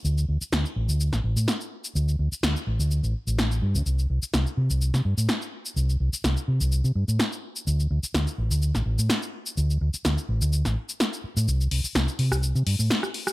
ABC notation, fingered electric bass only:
X:1
M:4/4
L:1/16
Q:"Swing 16ths" 1/4=126
K:Dphr
V:1 name="Fingered electric bass" clef=bass
D,,2 D,, z D,, z A,,, D,,2 A,,, A,,, A,, z4 | D,,2 D,, z D,, z A,,, D,,2 A,,, z A,,,3 G,, D,, | C,,2 C,, z C,, z C, C,,2 C, G,, A,, z4 | C,,2 C,, z C,, z C, C,,2 C, G,, A,, z4 |
D,,2 D,, z D,, z A,,, D,,2 A,,, A,,, A,, z4 | D,,2 D,, z D,, z A,,, D,,2 A,,, z4 z A,, | C,,2 C,, z C,, z C, C,,2 C, G,, A,, z4 |]